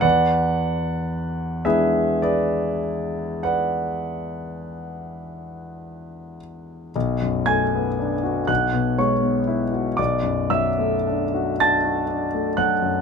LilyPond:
<<
  \new Staff \with { instrumentName = "Grand piano" } { \time 6/8 \key e \mixolydian \tempo 4. = 37 <b' d'' fis''>4. <gis' b' e''>8 <gis' b' d''>4 | <b' d'' fis''>2~ <b' d'' fis''>8 r8 | r8 <gis'' gis'''>4 <fis'' fis'''>8 <cis'' cis'''>4 | <d'' d'''>8 <e'' e'''>4 <a'' a'''>4 <fis'' fis'''>8 | }
  \new Staff \with { instrumentName = "Grand piano" } { \time 6/8 \key e \mixolydian e,4. <gis b d' e'>4.~ | <gis b d' e'>2. | b,,16 fis,16 a16 b16 d'16 fis'16 b,,16 b,16 gis16 b16 e'16 fis'16 | b,,16 fis,16 fis16 a16 d'16 fis'16 d'16 fis'16 d'16 a16 fis16 fis,16 | }
>>